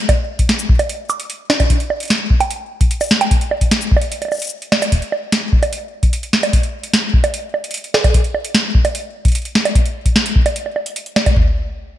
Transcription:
0.09 kick loud
0.09 closed hi-hat medium
0.09 high bongo medium
0.39 kick medium
0.39 closed hi-hat medium
0.49 snare loud
0.49 closed hi-hat medium
0.59 shaker medium
0.69 kick loud
0.79 closed hi-hat medium
0.79 high bongo medium
0.89 closed hi-hat medium
1.10 high bongo medium
1.10 shaker medium
1.20 closed hi-hat medium
1.30 closed hi-hat medium
1.50 snare loud
1.50 closed hi-hat soft
1.50 high bongo medium
1.60 kick loud
1.60 closed hi-hat medium
1.60 high bongo medium
1.70 kick loud
1.70 closed hi-hat medium
1.80 closed hi-hat soft
1.90 high bongo medium
2.00 closed hi-hat soft
2.03 closed hi-hat soft
2.05 closed hi-hat soft
2.08 snare loud
2.08 closed hi-hat soft
2.10 closed hi-hat medium
2.13 closed hi-hat soft
2.30 kick loud
2.40 closed hi-hat medium
2.40 high bongo medium
2.51 closed hi-hat medium
2.81 kick loud
2.81 closed hi-hat medium
2.91 closed hi-hat medium
3.01 closed hi-hat soft
3.01 high bongo medium
3.01 shaker medium
3.03 shaker medium
3.06 shaker soft
3.08 snare loud
3.08 shaker soft
3.21 closed hi-hat medium
3.21 high bongo medium
3.31 kick loud
3.31 closed hi-hat medium
3.41 closed hi-hat soft
3.51 high bongo medium
3.61 kick medium
3.61 closed hi-hat medium
3.71 snare loud
3.71 closed hi-hat medium
3.81 shaker medium
3.92 kick loud
3.97 high bongo medium
4.01 closed hi-hat medium
4.12 closed hi-hat medium
4.22 closed hi-hat soft
4.22 high bongo soft
4.25 high bongo soft
4.28 high bongo soft
4.32 high bongo medium
4.32 shaker soft
4.34 high bongo soft
4.34 shaker soft
4.37 high bongo soft
4.37 shaker soft
4.39 closed hi-hat medium
4.39 shaker medium
4.42 shaker medium
4.44 shaker medium
4.47 shaker medium
4.49 shaker medium
4.62 closed hi-hat soft
4.72 snare loud
4.72 high bongo medium
4.82 closed hi-hat medium
4.82 high bongo medium
4.82 shaker medium
4.92 kick loud
4.92 closed hi-hat medium
4.95 kick soft
5.00 kick soft
5.00 closed hi-hat soft
5.12 high bongo medium
5.32 snare loud
5.32 closed hi-hat medium
5.53 kick loud
5.63 closed hi-hat medium
5.63 high bongo medium
5.73 closed hi-hat medium
6.03 kick loud
6.03 closed hi-hat medium
6.13 closed hi-hat medium
6.23 closed hi-hat soft
6.33 snare loud
6.43 closed hi-hat medium
6.43 high bongo medium
6.53 kick loud
6.53 closed hi-hat medium
6.63 closed hi-hat soft
6.83 closed hi-hat medium
6.94 snare loud
6.94 closed hi-hat medium
7.14 kick loud
7.24 closed hi-hat medium
7.24 high bongo medium
7.34 closed hi-hat medium
7.54 high bongo medium
7.64 closed hi-hat medium
7.71 closed hi-hat soft
7.74 closed hi-hat medium
7.77 closed hi-hat soft
7.84 closed hi-hat soft
7.94 snare loud
7.94 high bongo medium
8.04 kick loud
8.04 closed hi-hat medium
8.04 high bongo medium
8.14 kick loud
8.14 closed hi-hat medium
8.24 closed hi-hat soft
8.34 high bongo medium
8.45 closed hi-hat medium
8.55 snare loud
8.55 closed hi-hat medium
8.75 kick loud
8.85 closed hi-hat medium
8.85 high bongo medium
8.95 closed hi-hat medium
9.25 kick loud
9.25 closed hi-hat medium
9.28 closed hi-hat soft
9.32 closed hi-hat soft
9.35 closed hi-hat medium
9.38 closed hi-hat soft
9.42 closed hi-hat soft
9.45 closed hi-hat soft
9.55 snare loud
9.65 closed hi-hat medium
9.65 high bongo medium
9.75 kick loud
9.75 closed hi-hat medium
9.86 closed hi-hat soft
10.06 kick medium
10.06 closed hi-hat medium
10.16 snare loud
10.26 closed hi-hat medium
10.36 kick loud
10.46 closed hi-hat medium
10.46 high bongo medium
10.56 closed hi-hat medium
10.66 high bongo soft
10.76 high bongo soft
10.86 closed hi-hat medium
10.96 closed hi-hat medium
11.06 closed hi-hat soft
11.16 snare loud
11.16 high bongo medium
11.26 kick loud
11.26 closed hi-hat medium
11.26 high bongo medium
11.36 kick loud
11.36 floor tom loud

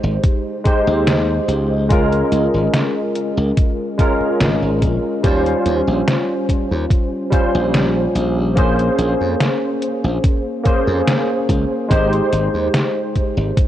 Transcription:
0.00 0.17 G#1 medium
0.00 0.60 G#3 medium
0.00 0.60 D#4 medium
0.00 0.61 G4 medium
0.00 0.61 C5 medium
0.24 kick loud
0.24 closed hi-hat medium
0.64 1.85 G#3 medium
0.64 1.86 D#4 medium
0.64 1.86 G4 medium
0.64 1.87 C5 medium
0.64 kick loud
0.64 closed hi-hat medium
0.87 1.39 D#2 medium
1.07 snare loud
1.07 closed hi-hat medium
1.48 2.22 C#2 medium
1.48 closed hi-hat medium
1.89 3.94 G#3 medium
1.89 3.94 C#4 medium
1.89 3.95 F4 medium
1.89 3.95 A#4 loud
1.89 kick loud
1.89 closed hi-hat medium
2.13 closed hi-hat soft
2.32 2.47 C#2 loud
2.32 closed hi-hat medium
2.54 2.67 G#1 medium
2.74 snare loud
2.74 closed hi-hat medium
3.16 closed hi-hat medium
3.37 3.51 C#2 medium
3.57 kick loud
3.57 closed hi-hat medium
3.98 5.19 G#3 medium
3.98 5.19 C#4 medium
3.98 5.20 F4 medium
3.98 5.20 A#4 medium
3.98 kick loud
3.98 closed hi-hat medium
4.20 muted slap bass stroke soft
4.40 4.55 G#1 medium
4.40 snare loud
4.40 closed hi-hat medium
4.62 4.82 G#1 medium
4.82 4.97 A#1 medium
4.82 kick medium
4.82 closed hi-hat medium
5.23 5.53 D#2 loud
5.23 7.27 G3 medium
5.23 7.28 C#4 medium
5.23 7.28 F4 medium
5.23 7.29 C5 medium
5.23 kick loud
5.23 closed hi-hat medium
5.46 closed hi-hat soft
5.66 5.81 D#2 medium
5.66 closed hi-hat medium
5.88 6.01 A#1 medium
6.08 snare loud
6.08 closed hi-hat medium
6.49 kick medium
6.49 closed hi-hat medium
6.71 6.84 D#2 medium
6.91 kick loud
6.91 closed hi-hat medium
7.30 8.52 G3 medium
7.30 8.52 C#4 medium
7.30 8.53 F4 medium
7.30 8.53 C5 medium
7.30 kick loud
7.30 closed hi-hat medium
7.55 8.06 A#1 medium
7.74 snare loud
7.74 closed hi-hat medium
8.15 8.88 A#1 medium
8.15 closed hi-hat medium
8.55 10.60 A#3 medium
8.55 10.61 C#4 medium
8.55 10.61 G#4 medium
8.55 10.62 C5 medium
8.55 kick loud
8.55 closed hi-hat medium
8.79 closed hi-hat soft
8.98 9.14 A#1 loud
8.98 closed hi-hat medium
9.21 9.34 F2 medium
9.40 snare loud
9.40 closed hi-hat medium
9.82 closed hi-hat medium
10.04 10.17 A#1 medium
10.24 kick loud
10.24 closed hi-hat medium
10.64 11.85 A#3 medium
10.64 11.86 C#4 medium
10.64 11.86 G#4 medium
10.64 11.87 C5 medium
10.64 kick medium
10.64 closed hi-hat medium
10.87 11.01 F2 loud
11.07 snare loud
11.07 closed hi-hat medium
11.49 11.64 C#2 medium
11.49 kick medium
11.49 closed hi-hat medium
11.88 12.19 G#1 loud
11.88 13.68 G#3 medium
11.88 13.68 D#4 medium
11.88 13.68 G4 medium
11.88 13.68 C5 loud
11.88 kick loud
11.88 closed hi-hat medium
12.13 closed hi-hat soft
12.32 12.47 G#1 loud
12.32 closed hi-hat medium
12.54 12.67 D#2 medium
12.74 snare loud
12.74 closed hi-hat medium
13.16 kick medium
13.16 closed hi-hat medium
13.37 13.51 G#1 medium
13.57 kick loud
13.57 closed hi-hat medium

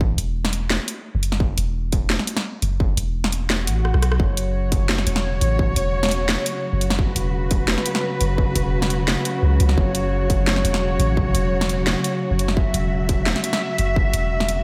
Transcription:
0.00 0.17 A1 medium
0.00 kick loud
0.18 0.79 E1 medium
0.18 closed hi-hat medium
0.45 snare medium
0.53 closed hi-hat medium
0.70 snare loud
0.70 closed hi-hat soft
0.88 closed hi-hat medium
1.15 1.57 F#1 medium
1.23 closed hi-hat medium
1.32 snare medium
1.40 kick loud
1.58 2.18 E1 loud
1.58 closed hi-hat medium
1.92 kick loud
1.92 closed hi-hat medium
2.10 snare loud
2.19 snare medium
2.27 closed hi-hat medium
2.37 snare medium
2.62 2.96 F#1 medium
2.62 closed hi-hat medium
2.80 kick loud
2.97 3.69 E1 medium
2.97 closed hi-hat medium
3.24 snare medium
3.32 closed hi-hat medium
3.50 snare loud
3.50 closed hi-hat soft
3.50 swell medium
3.67 3.93 A1 loud
3.67 closed hi-hat medium
3.85 cross-stick medium
3.94 4.19 B1 medium
3.94 cross-stick medium
4.02 cross-stick medium
4.02 closed hi-hat medium
4.12 cross-stick medium
4.20 5.06 F#1 medium
4.20 14.63 C#3 medium
4.20 14.63 F#3 medium
4.20 14.63 F#4 medium
4.20 6.98 C#5 medium
4.20 kick loud
4.37 closed hi-hat medium
4.72 kick loud
4.72 closed hi-hat medium
4.89 snare loud
4.99 snare medium
5.07 5.41 E1 medium
5.07 closed hi-hat medium
5.16 snare medium
5.41 5.76 A1 medium
5.41 closed hi-hat medium
5.59 kick loud
5.76 6.37 E1 medium
5.76 closed hi-hat medium
6.03 snare medium
6.05 snare medium
6.09 snare soft
6.09 closed hi-hat medium
6.29 snare loud
6.29 closed hi-hat soft
6.46 closed hi-hat medium
6.73 7.15 F#1 medium
6.81 closed hi-hat medium
6.90 snare medium
6.99 9.77 B4 medium
6.99 kick loud
7.16 7.77 E1 medium
7.16 closed hi-hat medium
7.51 kick loud
7.51 closed hi-hat medium
7.68 snare loud
7.78 snare soft
7.86 closed hi-hat medium
7.95 snare medium
8.21 8.55 F#1 medium
8.21 closed hi-hat medium
8.38 kick loud
8.56 9.16 E1 medium
8.56 kick medium
8.56 closed hi-hat medium
8.82 snare medium
8.90 closed hi-hat medium
9.08 snare loud
9.08 closed hi-hat soft
9.25 closed hi-hat medium
9.43 9.59 C#2 medium
9.60 9.76 C#2 medium
9.60 closed hi-hat medium
9.69 snare medium
9.78 10.64 F#1 loud
9.78 12.56 C#5 medium
9.78 kick loud
9.95 closed hi-hat medium
10.30 kick loud
10.30 closed hi-hat medium
10.47 snare loud
10.56 snare soft
10.65 10.99 E1 medium
10.65 closed hi-hat medium
10.74 snare medium
10.99 11.34 A1 medium
10.99 closed hi-hat medium
11.17 kick loud
11.35 11.95 E1 loud
11.35 closed hi-hat medium
11.61 snare medium
11.69 closed hi-hat medium
11.87 snare loud
11.87 closed hi-hat soft
12.04 closed hi-hat medium
12.31 12.73 F#1 medium
12.39 closed hi-hat medium
12.48 snare medium
12.57 14.63 E5 medium
12.57 kick loud
12.74 13.35 E1 medium
12.74 closed hi-hat medium
13.09 kick loud
13.09 closed hi-hat medium
13.26 snare loud
13.36 snare medium
13.44 closed hi-hat medium
13.53 snare medium
13.78 14.13 F#1 medium
13.78 closed hi-hat medium
13.96 kick loud
14.14 14.63 E1 medium
14.14 closed hi-hat medium
14.40 snare medium
14.49 closed hi-hat medium

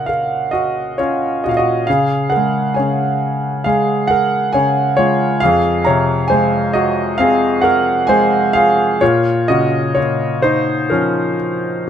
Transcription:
0.00 1.45 A#2 soft
0.00 0.49 C#3 soft
0.00 0.95 C#4 soft
0.00 0.99 F4 soft
0.00 0.53 F#4 soft
0.00 0.09 A#4 soft
0.00 0.98 C#5 medium
0.00 0.51 D#5 medium
0.00 0.06 F5 soft
0.00 1.89 F#5 medium
0.06 0.50 A#4 soft
0.06 0.53 F5 medium
0.51 0.95 F#4 soft
0.51 0.99 D#5 medium
0.98 1.86 C#4 soft
0.98 1.41 F4 soft
0.98 1.45 C#5 medium
1.44 1.88 A#2 soft
1.44 1.51 F#4 medium
1.44 1.51 D#5 medium
1.49 1.56 F5 medium
1.57 1.86 F#4 soft
1.57 1.88 D#5 medium
1.87 2.78 C#3 soft
1.87 2.29 G#4 medium
1.87 2.32 F5 medium
2.30 2.73 A#4 soft
2.30 2.76 F#5 medium
2.37 3.65 G#3 soft
2.74 3.61 C#5 soft
2.74 3.66 G#5 medium
2.79 4.51 C#3 soft
3.64 4.97 G#3 medium
3.64 4.06 G#4 medium
3.64 4.10 F5 medium
4.07 4.51 A#4 medium
4.07 4.54 F#5 medium
4.53 5.39 C#3 soft
4.53 4.95 C#5 medium
4.53 4.94 G#5 medium
4.97 5.40 G#3 soft
4.97 5.39 F4 medium
4.97 5.42 C#5 medium
5.40 5.82 G#4 medium
5.40 5.86 F5 medium
5.45 8.99 F2 medium
5.85 7.60 C3 medium
5.85 6.26 C#5 medium
5.85 6.30 A#5 medium
6.28 8.06 G#3 medium
6.28 6.70 C5 medium
6.28 6.74 G#5 medium
6.73 7.16 F#4 medium
6.73 7.15 D#5 medium
7.18 8.98 C4 medium
7.18 7.61 G#4 medium
7.18 7.64 F5 medium
7.61 8.06 A#4 medium
7.61 8.09 F#5 medium
8.07 8.99 G#3 medium
8.07 8.52 C5 medium
8.07 8.55 G#5 medium
8.53 9.01 F4 soft
8.53 8.98 G#4 medium
8.53 8.97 F5 medium
9.01 9.96 A#2 medium
9.01 9.46 F4 medium
9.01 9.50 C#5 medium
9.48 11.35 C#3 medium
9.48 9.93 F#4 medium
9.48 9.97 D#5 medium
9.95 11.85 A#2 medium
9.95 10.40 F4 soft
9.95 10.39 C#5 medium
10.42 10.88 D#4 medium
10.42 10.92 C5 medium
10.90 11.89 F3 medium
10.90 11.89 C#4 medium
10.90 11.89 A#4 medium

